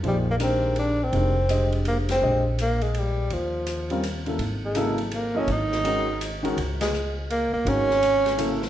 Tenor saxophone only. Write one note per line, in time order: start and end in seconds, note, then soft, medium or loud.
0.08 0.17 G3 medium
0.31 0.36 A#3 medium
0.43 0.76 C4 medium
0.79 1.05 D4 medium
1.03 1.74 C4 loud
1.88 1.98 A#3 medium
2.11 2.44 C4 medium
2.61 2.84 A#3 medium
2.83 3.00 G#3 medium
2.99 3.34 G3 medium
3.33 4.05 F3 medium
4.66 4.98 G#3 medium
5.15 5.40 A#3 medium
5.39 5.50 C#4 medium
5.52 6.42 D#4 loud
6.81 7.15 G#3 medium
7.31 7.52 A#3 medium
7.54 7.70 A#3 medium
7.69 8.63 C#4 loud